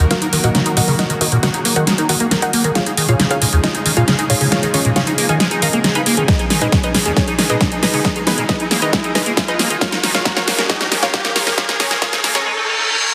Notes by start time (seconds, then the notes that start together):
Already playing: D#3 F#3 A#3 F#4 A#4, riser
0.11 D#3 F4 F#4 A#4 F5, snare, closed hi-hat
0.22 D#4 A#4, closed hi-hat
0.33 D#3 A#4, open hi-hat
0.44 A#2 F#4 A#4 D#5 F#5, closed hi-hat
0.55 C#3 A#4, snare, closed hi-hat
0.66 D#4 A#4, closed hi-hat
0.77 A#2 F#4 A#4 D#5 F#5, open hi-hat
0.88 C#3 A#4, open hi-hat
0.99 D#3 F#4 G#4 A#4 D#5 F#5, snare, closed hi-hat
1.10 D#3 A#4, closed hi-hat
1.21 D#3 D#4 F#4 A#4 D#5, open hi-hat
1.32 A#2 A#4, closed hi-hat
1.43 C#3 F#4 A#4 D#5 F#5, snare, closed hi-hat
1.54 D#4 A#4, closed hi-hat
1.65 A#3 A#4, open hi-hat
1.76 D#3 F#4 A#4 D#5 F#5, closed hi-hat
1.87 G#3 A#4, snare, closed hi-hat
1.98 D#4 A#4, closed hi-hat
2.09 D#3 F#4 A#4 D#5 F#5, open hi-hat
2.20 A#3 A#4, closed hi-hat
2.31 D#3 A#4, snare, closed hi-hat
2.42 D#4 F#4 A#4 D#5 F#5, closed hi-hat
2.53 A#3 A#4, open hi-hat
2.64 D#3 A#4, closed hi-hat
2.75 C#3 D#3 F3 G#3 D#4 F4 G#4 C#5 F5, snare, closed hi-hat
2.86 D#4 G#4, closed hi-hat
2.97 D#3 G#4, open hi-hat
3.09 A#2 F4 G#4 C#5 F5, closed hi-hat
3.20 C#3 G#4, snare, closed hi-hat
3.31 D#4 F4 G#4 C#5 F5, closed hi-hat
3.42 A#2 G#4, open hi-hat
3.53 D#2 G#4, closed hi-hat
3.64 D#3 D#4 F4 G#4 D#5, snare, closed hi-hat
3.75 D#4 G#4, closed hi-hat
3.86 D#3 G#4, open hi-hat
3.97 A#2 F4 G#4 C#5 F5, closed hi-hat
4.08 C#3 G#4, snare, closed hi-hat
4.19 D#4 G#4, closed hi-hat
4.30 A#2 F4 G#4 C#5 F5, open hi-hat
4.41 C#3 G#4, open hi-hat
4.52 D#3 F4 G#4 C#5 F5, snare, closed hi-hat
4.63 D#3 G#4, closed hi-hat
4.74 D#3 C#4 F4 G#4 C#5, open hi-hat
4.85 A#2 G#4, closed hi-hat
4.96 C#3 F4 G#4 C#5 F5, snare, closed hi-hat
5.07 D#4 G#4, closed hi-hat
5.18 A#3 G#4, open hi-hat
5.29 D#3 G#4 D#5 F5 G#5, closed hi-hat
5.40 G#3 G#4, snare, closed hi-hat
5.51 D#4 G#4, closed hi-hat
5.62 D#3 A#4 D#5 F5 A#5, open hi-hat
5.73 A#3 G#4, closed hi-hat
5.84 D#3 G#4, snare, closed hi-hat
5.95 D#4 B4 F5 G#5 B5, closed hi-hat
6.06 A#3 G#4, open hi-hat
6.17 D#3 G#4, closed hi-hat
6.28 B2 D#3 G#3 D#4 G#4 B4 D#5, kick, snare, closed hi-hat
6.39 D#4 G#4, closed hi-hat
6.50 D#3 G#4, snare, open hi-hat
6.61 A#2 D#4 G#4 B4 D#5, closed hi-hat
6.72 C#3 G#4, kick, snare, closed hi-hat
6.83 D#4 G#4 B4 D#5, closed hi-hat
6.94 A#2 G#4, snare, open hi-hat
7.06 D#2 G#4, closed hi-hat
7.17 D#3 C#4 D#4 G#4 C#5, kick, snare, closed hi-hat
7.28 D#4 G#4, closed hi-hat
7.39 D#3 G#4, snare, open hi-hat
7.50 A#2 D#4 G#4 B4 D#5, closed hi-hat
7.61 C#3, kick, snare, closed hi-hat
7.72 D#4 G#4, closed hi-hat
7.83 A#2 D#4 G#4 B4 D#5, snare, open hi-hat
7.94 C#3 G#4, open hi-hat
8.05 D#3 D#4 G#4 B4 D#5, kick, snare, closed hi-hat
8.16 D#3 G#4, closed hi-hat
8.27 D#3 B3 D#4 G#4 B4, snare, open hi-hat
8.38 A#2 G#4, closed hi-hat
8.49 C#3 D#4 G#4 B4 D#5, kick, snare, closed hi-hat
8.60 D#4 G#4, closed hi-hat
8.71 A#3 G#4, snare, open hi-hat
8.82 D#3 D#4 G#4 B4 D#5, closed hi-hat
8.93 G#3, kick, snare, closed hi-hat
9.04 D#4 G#4, closed hi-hat
9.15 D#3 D#4 G#4 B4 D#5, snare, open hi-hat
9.26 A#3 G#4, closed hi-hat
9.37 D#3 G#4, kick, snare, closed hi-hat
9.48 D#4 G#4 B4 D#5, closed hi-hat
9.59 A#3 G#4, snare, open hi-hat
9.70 D#3 G#4, closed hi-hat
9.81 A#2 D#3 F3 G#3 C#4 F4 G#4 A#4 C#5 F5, kick, snare, closed hi-hat
9.92 D#4 A#4, snare, closed hi-hat
10.03 D#3 A#4, snare, open hi-hat
10.14 A#2 F4 A#4 C#5 F5, snare, closed hi-hat
10.25 C#3 A#4, kick, snare, closed hi-hat
10.36 D#4 F4 A#4 C#5 F5, snare, closed hi-hat
10.47 A#2 A#4, snare, open hi-hat
10.59 D#2 A#4, snare, closed hi-hat
10.70 D#3 D#4 G#4 A#4 D#5, kick, snare, closed hi-hat
10.81 D#4 A#4, snare, closed hi-hat
10.92 D#3 A#4, snare, open hi-hat
11.03 A#2 F4 A#4 C#5 F5, snare, closed hi-hat
11.14 C#3 A#4, kick, snare, closed hi-hat
11.25 D#4 A#4, snare, closed hi-hat
11.36 A#2 F4 A#4 C#5 F5, snare, open hi-hat
11.47 C#3 A#4, snare, open hi-hat
11.58 D#3 F4 A#4 C#5 F5, kick, snare, closed hi-hat
11.69 D#3 A#4, snare, closed hi-hat
11.80 D#3 C#4 G#4 A#4 C#5, snare, open hi-hat
11.91 A#2 A#4, snare, closed hi-hat
12.02 C#3 F4 A#4 C#5 F5, kick, snare, closed hi-hat
12.13 D#4 A#4, snare, closed hi-hat
12.24 A#3 A#4, snare, open hi-hat
12.35 D#3 C#4 G#4 A#4 C#5, snare, closed hi-hat
12.46 G#3, reverse cymbal
12.57 D#4
12.68 D#3
12.79 D#4
12.90 D#4
13.01 A#2